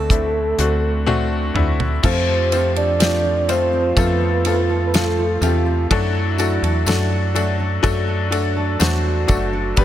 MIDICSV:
0, 0, Header, 1, 7, 480
1, 0, Start_track
1, 0, Tempo, 967742
1, 1008, Time_signature, 4, 2, 24, 8
1, 4884, End_track
2, 0, Start_track
2, 0, Title_t, "Soft synth lead"
2, 0, Program_c, 0, 80
2, 0, Note_on_c, 0, 69, 91
2, 769, Note_off_c, 0, 69, 0
2, 1016, Note_on_c, 0, 72, 106
2, 1352, Note_off_c, 0, 72, 0
2, 1374, Note_on_c, 0, 74, 102
2, 1740, Note_on_c, 0, 72, 98
2, 1748, Note_off_c, 0, 74, 0
2, 1977, Note_on_c, 0, 71, 95
2, 1985, Note_off_c, 0, 72, 0
2, 2413, Note_off_c, 0, 71, 0
2, 2416, Note_on_c, 0, 71, 57
2, 2454, Note_on_c, 0, 69, 76
2, 2462, Note_off_c, 0, 71, 0
2, 2811, Note_off_c, 0, 69, 0
2, 4859, Note_on_c, 0, 71, 93
2, 4884, Note_off_c, 0, 71, 0
2, 4884, End_track
3, 0, Start_track
3, 0, Title_t, "French horn section"
3, 0, Program_c, 1, 60
3, 1007, Note_on_c, 1, 67, 111
3, 1468, Note_off_c, 1, 67, 0
3, 1490, Note_on_c, 1, 65, 106
3, 2909, Note_off_c, 1, 65, 0
3, 2928, Note_on_c, 1, 64, 108
3, 3754, Note_off_c, 1, 64, 0
3, 3886, Note_on_c, 1, 62, 97
3, 4348, Note_off_c, 1, 62, 0
3, 4363, Note_on_c, 1, 66, 104
3, 4845, Note_on_c, 1, 67, 117
3, 4846, Note_off_c, 1, 66, 0
3, 4884, Note_off_c, 1, 67, 0
3, 4884, End_track
4, 0, Start_track
4, 0, Title_t, "Steel-string acoustic guitar"
4, 0, Program_c, 2, 25
4, 0, Note_on_c, 2, 50, 79
4, 0, Note_on_c, 2, 60, 58
4, 0, Note_on_c, 2, 66, 59
4, 0, Note_on_c, 2, 69, 55
4, 49, Note_on_c, 2, 57, 66
4, 285, Note_off_c, 2, 66, 0
4, 291, Note_on_c, 2, 66, 62
4, 522, Note_off_c, 2, 69, 0
4, 528, Note_on_c, 2, 69, 58
4, 766, Note_off_c, 2, 66, 0
4, 772, Note_on_c, 2, 66, 60
4, 1010, Note_off_c, 2, 50, 0
4, 1010, Note_off_c, 2, 57, 0
4, 1012, Note_on_c, 2, 53, 79
4, 1058, Note_off_c, 2, 66, 0
4, 1065, Note_off_c, 2, 60, 0
4, 1132, Note_on_c, 2, 60, 56
4, 1251, Note_on_c, 2, 65, 59
4, 1368, Note_off_c, 2, 69, 0
4, 1370, Note_on_c, 2, 69, 59
4, 1484, Note_off_c, 2, 60, 0
4, 1490, Note_on_c, 2, 60, 67
4, 1602, Note_off_c, 2, 65, 0
4, 1608, Note_on_c, 2, 65, 60
4, 1728, Note_off_c, 2, 69, 0
4, 1730, Note_on_c, 2, 69, 67
4, 1844, Note_off_c, 2, 60, 0
4, 1850, Note_on_c, 2, 60, 59
4, 1970, Note_off_c, 2, 53, 0
4, 2082, Note_off_c, 2, 60, 0
4, 2088, Note_on_c, 2, 60, 54
4, 2203, Note_off_c, 2, 65, 0
4, 2209, Note_on_c, 2, 65, 58
4, 2328, Note_off_c, 2, 69, 0
4, 2330, Note_on_c, 2, 69, 65
4, 2442, Note_off_c, 2, 60, 0
4, 2448, Note_on_c, 2, 60, 61
4, 2562, Note_off_c, 2, 65, 0
4, 2567, Note_on_c, 2, 65, 58
4, 2686, Note_off_c, 2, 69, 0
4, 2688, Note_on_c, 2, 69, 70
4, 2801, Note_off_c, 2, 60, 0
4, 2807, Note_on_c, 2, 60, 58
4, 2929, Note_on_c, 2, 54, 85
4, 2976, Note_off_c, 2, 60, 0
4, 2976, Note_off_c, 2, 65, 0
4, 3050, Note_on_c, 2, 62, 56
4, 3168, Note_on_c, 2, 66, 61
4, 3288, Note_off_c, 2, 69, 0
4, 3290, Note_on_c, 2, 69, 61
4, 3407, Note_off_c, 2, 62, 0
4, 3409, Note_on_c, 2, 62, 67
4, 3525, Note_off_c, 2, 66, 0
4, 3531, Note_on_c, 2, 66, 61
4, 3643, Note_off_c, 2, 69, 0
4, 3649, Note_on_c, 2, 69, 68
4, 3766, Note_off_c, 2, 62, 0
4, 3768, Note_on_c, 2, 62, 63
4, 3881, Note_off_c, 2, 54, 0
4, 3887, Note_on_c, 2, 54, 83
4, 4003, Note_off_c, 2, 62, 0
4, 4005, Note_on_c, 2, 62, 60
4, 4121, Note_off_c, 2, 66, 0
4, 4127, Note_on_c, 2, 66, 62
4, 4242, Note_off_c, 2, 69, 0
4, 4247, Note_on_c, 2, 69, 65
4, 4364, Note_off_c, 2, 62, 0
4, 4366, Note_on_c, 2, 62, 65
4, 4481, Note_off_c, 2, 66, 0
4, 4487, Note_on_c, 2, 66, 62
4, 4600, Note_off_c, 2, 69, 0
4, 4606, Note_on_c, 2, 69, 69
4, 4724, Note_off_c, 2, 62, 0
4, 4726, Note_on_c, 2, 62, 59
4, 4846, Note_on_c, 2, 43, 88
4, 4884, Note_off_c, 2, 43, 0
4, 4884, Note_off_c, 2, 54, 0
4, 4884, Note_off_c, 2, 62, 0
4, 4884, Note_off_c, 2, 66, 0
4, 4884, Note_off_c, 2, 69, 0
4, 4884, End_track
5, 0, Start_track
5, 0, Title_t, "Upright piano"
5, 0, Program_c, 3, 0
5, 0, Control_c, 3, 64, 127
5, 0, Note_on_c, 3, 45, 59
5, 0, Note_on_c, 3, 57, 72
5, 0, Note_on_c, 3, 60, 67
5, 0, Note_on_c, 3, 62, 63
5, 0, Note_on_c, 3, 66, 76
5, 0, Note_on_c, 3, 69, 74
5, 50, Note_off_c, 3, 57, 0
5, 50, Note_on_c, 3, 57, 67
5, 51, Note_off_c, 3, 60, 0
5, 51, Note_on_c, 3, 60, 63
5, 52, Note_off_c, 3, 62, 0
5, 52, Note_on_c, 3, 62, 63
5, 55, Note_on_c, 3, 64, 71
5, 277, Note_off_c, 3, 57, 0
5, 278, Note_off_c, 3, 60, 0
5, 278, Note_off_c, 3, 62, 0
5, 280, Note_off_c, 3, 64, 0
5, 291, Note_on_c, 3, 57, 83
5, 291, Note_on_c, 3, 60, 79
5, 294, Note_on_c, 3, 62, 75
5, 297, Note_off_c, 3, 66, 0
5, 297, Note_on_c, 3, 66, 97
5, 518, Note_off_c, 3, 57, 0
5, 518, Note_off_c, 3, 60, 0
5, 519, Note_off_c, 3, 62, 0
5, 521, Note_off_c, 3, 66, 0
5, 528, Note_on_c, 3, 57, 101
5, 528, Note_on_c, 3, 60, 98
5, 531, Note_on_c, 3, 62, 97
5, 533, Note_on_c, 3, 66, 120
5, 756, Note_off_c, 3, 57, 0
5, 756, Note_off_c, 3, 60, 0
5, 758, Note_off_c, 3, 62, 0
5, 759, Note_off_c, 3, 66, 0
5, 765, Note_on_c, 3, 57, 86
5, 769, Note_on_c, 3, 60, 72
5, 772, Note_on_c, 3, 62, 78
5, 773, Note_on_c, 3, 64, 93
5, 995, Note_off_c, 3, 57, 0
5, 997, Note_off_c, 3, 60, 0
5, 998, Note_off_c, 3, 62, 0
5, 999, Note_off_c, 3, 64, 0
5, 1007, Note_on_c, 3, 53, 90
5, 1009, Note_on_c, 3, 57, 85
5, 1010, Note_on_c, 3, 48, 62
5, 1010, Note_on_c, 3, 60, 82
5, 1010, Note_on_c, 3, 65, 86
5, 1013, Note_off_c, 3, 69, 0
5, 1013, Note_on_c, 3, 69, 105
5, 1014, Control_c, 3, 64, 0
5, 1015, Note_off_c, 3, 45, 0
5, 1106, Control_c, 3, 64, 127
5, 1236, Note_off_c, 3, 53, 0
5, 1236, Note_off_c, 3, 57, 0
5, 1237, Note_off_c, 3, 60, 0
5, 1237, Note_off_c, 3, 65, 0
5, 1239, Note_off_c, 3, 69, 0
5, 1249, Note_on_c, 3, 53, 67
5, 1251, Note_on_c, 3, 57, 62
5, 1252, Note_on_c, 3, 65, 65
5, 1253, Note_on_c, 3, 60, 68
5, 1254, Note_on_c, 3, 72, 79
5, 1476, Note_off_c, 3, 57, 0
5, 1477, Note_off_c, 3, 53, 0
5, 1478, Note_off_c, 3, 60, 0
5, 1478, Note_off_c, 3, 65, 0
5, 1479, Note_off_c, 3, 72, 0
5, 1483, Note_on_c, 3, 57, 64
5, 1484, Note_on_c, 3, 53, 69
5, 1485, Note_on_c, 3, 60, 64
5, 1487, Note_on_c, 3, 65, 63
5, 1489, Note_on_c, 3, 67, 77
5, 1710, Note_off_c, 3, 48, 0
5, 1714, Note_off_c, 3, 53, 0
5, 1714, Note_off_c, 3, 57, 0
5, 1715, Note_off_c, 3, 60, 0
5, 1716, Note_off_c, 3, 65, 0
5, 1717, Note_off_c, 3, 67, 0
5, 1728, Note_on_c, 3, 53, 72
5, 1729, Note_on_c, 3, 57, 67
5, 1730, Note_on_c, 3, 60, 68
5, 1731, Note_on_c, 3, 65, 67
5, 1732, Note_on_c, 3, 72, 84
5, 1956, Note_off_c, 3, 53, 0
5, 1957, Note_off_c, 3, 57, 0
5, 1957, Note_off_c, 3, 60, 0
5, 1958, Note_off_c, 3, 65, 0
5, 1958, Note_off_c, 3, 72, 0
5, 1967, Note_on_c, 3, 53, 88
5, 1968, Note_on_c, 3, 57, 82
5, 1969, Note_on_c, 3, 65, 80
5, 1970, Note_on_c, 3, 60, 83
5, 1971, Note_on_c, 3, 69, 100
5, 2196, Note_off_c, 3, 53, 0
5, 2196, Note_off_c, 3, 57, 0
5, 2197, Note_off_c, 3, 60, 0
5, 2197, Note_off_c, 3, 65, 0
5, 2198, Note_off_c, 3, 69, 0
5, 2210, Note_on_c, 3, 53, 68
5, 2211, Note_on_c, 3, 60, 65
5, 2212, Note_on_c, 3, 57, 62
5, 2215, Note_on_c, 3, 65, 61
5, 2215, Note_on_c, 3, 69, 77
5, 2437, Note_off_c, 3, 53, 0
5, 2438, Note_off_c, 3, 57, 0
5, 2438, Note_off_c, 3, 60, 0
5, 2440, Note_off_c, 3, 65, 0
5, 2440, Note_off_c, 3, 69, 0
5, 2450, Note_on_c, 3, 53, 71
5, 2453, Note_on_c, 3, 57, 65
5, 2454, Note_on_c, 3, 60, 68
5, 2455, Note_on_c, 3, 65, 60
5, 2457, Note_on_c, 3, 69, 76
5, 2677, Note_off_c, 3, 53, 0
5, 2679, Note_off_c, 3, 57, 0
5, 2679, Note_off_c, 3, 60, 0
5, 2680, Note_off_c, 3, 65, 0
5, 2681, Note_off_c, 3, 69, 0
5, 2690, Note_on_c, 3, 48, 70
5, 2691, Note_on_c, 3, 57, 67
5, 2693, Note_on_c, 3, 60, 62
5, 2695, Note_on_c, 3, 65, 63
5, 2695, Note_on_c, 3, 67, 78
5, 2917, Note_off_c, 3, 48, 0
5, 2918, Note_off_c, 3, 57, 0
5, 2919, Note_off_c, 3, 60, 0
5, 2920, Note_off_c, 3, 65, 0
5, 2920, Note_off_c, 3, 67, 0
5, 2929, Note_on_c, 3, 54, 112
5, 2932, Note_on_c, 3, 57, 106
5, 2932, Note_on_c, 3, 66, 105
5, 2933, Note_on_c, 3, 62, 110
5, 2935, Control_c, 3, 64, 0
5, 2935, Note_on_c, 3, 69, 121
5, 3031, Control_c, 3, 64, 127
5, 3157, Note_off_c, 3, 54, 0
5, 3158, Note_off_c, 3, 57, 0
5, 3158, Note_off_c, 3, 66, 0
5, 3159, Note_off_c, 3, 62, 0
5, 3160, Note_off_c, 3, 69, 0
5, 3166, Note_on_c, 3, 54, 85
5, 3169, Note_on_c, 3, 57, 76
5, 3169, Note_on_c, 3, 62, 75
5, 3171, Note_on_c, 3, 66, 81
5, 3171, Note_on_c, 3, 69, 93
5, 3395, Note_off_c, 3, 54, 0
5, 3397, Note_off_c, 3, 57, 0
5, 3397, Note_off_c, 3, 62, 0
5, 3398, Note_off_c, 3, 66, 0
5, 3398, Note_off_c, 3, 69, 0
5, 3407, Note_on_c, 3, 54, 82
5, 3407, Note_on_c, 3, 57, 81
5, 3409, Note_on_c, 3, 62, 78
5, 3409, Note_on_c, 3, 66, 77
5, 3411, Note_on_c, 3, 69, 97
5, 3636, Note_off_c, 3, 54, 0
5, 3636, Note_off_c, 3, 57, 0
5, 3637, Note_off_c, 3, 62, 0
5, 3637, Note_off_c, 3, 66, 0
5, 3638, Note_off_c, 3, 69, 0
5, 3644, Note_on_c, 3, 54, 91
5, 3645, Note_on_c, 3, 57, 77
5, 3646, Note_on_c, 3, 62, 81
5, 3648, Note_on_c, 3, 69, 96
5, 3649, Note_on_c, 3, 66, 81
5, 3874, Note_off_c, 3, 54, 0
5, 3875, Note_off_c, 3, 57, 0
5, 3875, Note_off_c, 3, 62, 0
5, 3876, Note_off_c, 3, 69, 0
5, 3877, Note_off_c, 3, 66, 0
5, 3882, Note_on_c, 3, 54, 115
5, 3883, Note_on_c, 3, 57, 102
5, 3884, Note_on_c, 3, 62, 100
5, 3885, Note_on_c, 3, 66, 98
5, 3887, Note_on_c, 3, 69, 116
5, 4113, Note_off_c, 3, 54, 0
5, 4114, Note_off_c, 3, 57, 0
5, 4114, Note_off_c, 3, 62, 0
5, 4115, Note_off_c, 3, 66, 0
5, 4116, Note_off_c, 3, 69, 0
5, 4120, Note_on_c, 3, 54, 86
5, 4122, Note_on_c, 3, 57, 76
5, 4123, Note_on_c, 3, 62, 81
5, 4125, Note_on_c, 3, 66, 79
5, 4126, Note_on_c, 3, 69, 92
5, 4352, Note_off_c, 3, 54, 0
5, 4353, Note_off_c, 3, 57, 0
5, 4354, Note_off_c, 3, 62, 0
5, 4355, Note_off_c, 3, 66, 0
5, 4355, Note_off_c, 3, 69, 0
5, 4361, Note_on_c, 3, 54, 81
5, 4361, Note_on_c, 3, 57, 77
5, 4362, Note_on_c, 3, 62, 78
5, 4364, Note_on_c, 3, 66, 78
5, 4365, Note_on_c, 3, 72, 91
5, 4592, Note_off_c, 3, 54, 0
5, 4593, Note_off_c, 3, 57, 0
5, 4593, Note_off_c, 3, 62, 0
5, 4594, Note_off_c, 3, 66, 0
5, 4595, Note_off_c, 3, 72, 0
5, 4599, Note_on_c, 3, 54, 82
5, 4602, Note_on_c, 3, 62, 77
5, 4603, Note_on_c, 3, 57, 76
5, 4603, Note_on_c, 3, 66, 78
5, 4605, Note_on_c, 3, 69, 92
5, 4832, Note_off_c, 3, 54, 0
5, 4833, Note_off_c, 3, 62, 0
5, 4834, Note_off_c, 3, 57, 0
5, 4834, Note_off_c, 3, 66, 0
5, 4835, Note_off_c, 3, 69, 0
5, 4843, Note_on_c, 3, 55, 96
5, 4845, Note_on_c, 3, 62, 85
5, 4847, Note_on_c, 3, 43, 63
5, 4847, Note_on_c, 3, 50, 68
5, 4847, Note_on_c, 3, 59, 86
5, 4848, Note_on_c, 3, 67, 89
5, 4849, Note_on_c, 3, 71, 104
5, 4854, Control_c, 3, 64, 0
5, 4884, Note_off_c, 3, 43, 0
5, 4884, Note_off_c, 3, 50, 0
5, 4884, Note_off_c, 3, 55, 0
5, 4884, Note_off_c, 3, 59, 0
5, 4884, Note_off_c, 3, 62, 0
5, 4884, Note_off_c, 3, 67, 0
5, 4884, Note_off_c, 3, 71, 0
5, 4884, End_track
6, 0, Start_track
6, 0, Title_t, "FM bass"
6, 0, Program_c, 4, 39
6, 0, Note_on_c, 4, 38, 95
6, 269, Note_off_c, 4, 38, 0
6, 290, Note_on_c, 4, 38, 91
6, 749, Note_off_c, 4, 38, 0
6, 767, Note_on_c, 4, 38, 92
6, 991, Note_off_c, 4, 38, 0
6, 1009, Note_on_c, 4, 41, 106
6, 1949, Note_off_c, 4, 41, 0
6, 1966, Note_on_c, 4, 41, 109
6, 2668, Note_off_c, 4, 41, 0
6, 2685, Note_on_c, 4, 40, 97
6, 2910, Note_off_c, 4, 40, 0
6, 2929, Note_on_c, 4, 42, 111
6, 3269, Note_off_c, 4, 42, 0
6, 3285, Note_on_c, 4, 40, 86
6, 3398, Note_off_c, 4, 40, 0
6, 3405, Note_on_c, 4, 42, 109
6, 3867, Note_off_c, 4, 42, 0
6, 3887, Note_on_c, 4, 42, 97
6, 4348, Note_off_c, 4, 42, 0
6, 4367, Note_on_c, 4, 40, 103
6, 4591, Note_off_c, 4, 40, 0
6, 4608, Note_on_c, 4, 30, 94
6, 4831, Note_off_c, 4, 30, 0
6, 4847, Note_on_c, 4, 31, 118
6, 4884, Note_off_c, 4, 31, 0
6, 4884, End_track
7, 0, Start_track
7, 0, Title_t, "Drums"
7, 49, Note_on_c, 9, 36, 84
7, 52, Note_on_c, 9, 42, 75
7, 99, Note_off_c, 9, 36, 0
7, 102, Note_off_c, 9, 42, 0
7, 290, Note_on_c, 9, 42, 76
7, 340, Note_off_c, 9, 42, 0
7, 532, Note_on_c, 9, 48, 49
7, 582, Note_off_c, 9, 48, 0
7, 772, Note_on_c, 9, 45, 78
7, 821, Note_off_c, 9, 45, 0
7, 893, Note_on_c, 9, 43, 82
7, 942, Note_off_c, 9, 43, 0
7, 1007, Note_on_c, 9, 54, 29
7, 1010, Note_on_c, 9, 36, 106
7, 1010, Note_on_c, 9, 49, 98
7, 1057, Note_off_c, 9, 54, 0
7, 1059, Note_off_c, 9, 36, 0
7, 1060, Note_off_c, 9, 49, 0
7, 1250, Note_on_c, 9, 51, 60
7, 1250, Note_on_c, 9, 54, 45
7, 1299, Note_off_c, 9, 54, 0
7, 1300, Note_off_c, 9, 51, 0
7, 1371, Note_on_c, 9, 51, 46
7, 1420, Note_off_c, 9, 51, 0
7, 1489, Note_on_c, 9, 51, 84
7, 1493, Note_on_c, 9, 54, 72
7, 1497, Note_on_c, 9, 38, 112
7, 1539, Note_off_c, 9, 51, 0
7, 1542, Note_off_c, 9, 54, 0
7, 1547, Note_off_c, 9, 38, 0
7, 1730, Note_on_c, 9, 51, 61
7, 1733, Note_on_c, 9, 54, 46
7, 1780, Note_off_c, 9, 51, 0
7, 1783, Note_off_c, 9, 54, 0
7, 1967, Note_on_c, 9, 36, 87
7, 1968, Note_on_c, 9, 51, 66
7, 1968, Note_on_c, 9, 54, 49
7, 2017, Note_off_c, 9, 36, 0
7, 2018, Note_off_c, 9, 51, 0
7, 2018, Note_off_c, 9, 54, 0
7, 2206, Note_on_c, 9, 51, 65
7, 2212, Note_on_c, 9, 54, 31
7, 2256, Note_off_c, 9, 51, 0
7, 2262, Note_off_c, 9, 54, 0
7, 2450, Note_on_c, 9, 54, 79
7, 2452, Note_on_c, 9, 51, 69
7, 2457, Note_on_c, 9, 38, 112
7, 2499, Note_off_c, 9, 54, 0
7, 2501, Note_off_c, 9, 51, 0
7, 2507, Note_off_c, 9, 38, 0
7, 2687, Note_on_c, 9, 54, 51
7, 2692, Note_on_c, 9, 51, 46
7, 2736, Note_off_c, 9, 54, 0
7, 2741, Note_off_c, 9, 51, 0
7, 2930, Note_on_c, 9, 36, 107
7, 2931, Note_on_c, 9, 51, 76
7, 2980, Note_off_c, 9, 36, 0
7, 2981, Note_off_c, 9, 51, 0
7, 3166, Note_on_c, 9, 54, 44
7, 3172, Note_on_c, 9, 51, 62
7, 3216, Note_off_c, 9, 54, 0
7, 3222, Note_off_c, 9, 51, 0
7, 3292, Note_on_c, 9, 51, 48
7, 3341, Note_off_c, 9, 51, 0
7, 3405, Note_on_c, 9, 54, 74
7, 3411, Note_on_c, 9, 51, 83
7, 3419, Note_on_c, 9, 38, 106
7, 3454, Note_off_c, 9, 54, 0
7, 3460, Note_off_c, 9, 51, 0
7, 3469, Note_off_c, 9, 38, 0
7, 3648, Note_on_c, 9, 54, 49
7, 3651, Note_on_c, 9, 51, 59
7, 3697, Note_off_c, 9, 54, 0
7, 3700, Note_off_c, 9, 51, 0
7, 3887, Note_on_c, 9, 36, 85
7, 3887, Note_on_c, 9, 54, 49
7, 3890, Note_on_c, 9, 51, 63
7, 3936, Note_off_c, 9, 54, 0
7, 3937, Note_off_c, 9, 36, 0
7, 3940, Note_off_c, 9, 51, 0
7, 4128, Note_on_c, 9, 51, 66
7, 4128, Note_on_c, 9, 54, 29
7, 4177, Note_off_c, 9, 51, 0
7, 4178, Note_off_c, 9, 54, 0
7, 4364, Note_on_c, 9, 54, 77
7, 4369, Note_on_c, 9, 51, 71
7, 4375, Note_on_c, 9, 38, 118
7, 4413, Note_off_c, 9, 54, 0
7, 4419, Note_off_c, 9, 51, 0
7, 4424, Note_off_c, 9, 38, 0
7, 4604, Note_on_c, 9, 54, 51
7, 4605, Note_on_c, 9, 51, 47
7, 4608, Note_on_c, 9, 36, 91
7, 4654, Note_off_c, 9, 51, 0
7, 4654, Note_off_c, 9, 54, 0
7, 4658, Note_off_c, 9, 36, 0
7, 4843, Note_on_c, 9, 54, 29
7, 4846, Note_on_c, 9, 51, 71
7, 4847, Note_on_c, 9, 36, 105
7, 4884, Note_off_c, 9, 36, 0
7, 4884, Note_off_c, 9, 51, 0
7, 4884, Note_off_c, 9, 54, 0
7, 4884, End_track
0, 0, End_of_file